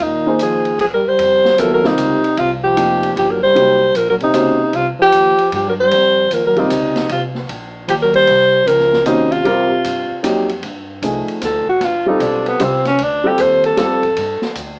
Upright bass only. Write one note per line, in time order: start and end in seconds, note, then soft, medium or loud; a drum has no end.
0.00 0.75 D#2 medium
1.18 1.57 F2 medium
1.58 1.96 D#2 medium
1.98 2.21 C#2 medium
2.24 muted upright bass stroke soft
2.38 2.75 C2 medium
2.77 3.15 F1 medium
3.16 3.54 G1 medium
3.56 3.94 C2 medium
3.94 4.33 A#1 medium
4.34 4.58 C#2 medium
4.60 muted upright bass stroke soft
4.73 4.97 C2 medium
4.99 muted upright bass stroke soft
5.13 5.37 D#2 medium
5.38 muted upright bass stroke soft
5.52 5.90 G2 medium
5.92 6.30 F2 medium
6.31 6.69 D#2 medium
6.71 7.09 C#2 medium
7.10 7.48 C2 medium
7.49 7.87 A#1 medium
7.88 8.26 D#2 medium
8.28 8.66 C2 medium
8.67 9.05 C#2 medium
9.06 9.44 D#2 medium
9.45 9.69 F2 medium
9.71 muted upright bass stroke soft
9.85 10.08 G2 medium
10.10 muted upright bass stroke soft
10.24 10.62 F2 medium
10.63 11.01 G2 medium
11.02 11.26 C2 medium
11.41 11.65 D2 medium
11.67 muted upright bass stroke soft
11.81 12.19 G1 medium
12.20 12.58 B1 medium
12.59 12.98 C2 medium
12.98 13.37 D2 medium
13.38 13.76 D#2 medium
13.77 14.15 F2 medium
14.17 14.41 G2 medium
14.42 muted upright bass stroke soft
14.55 14.79 D2 medium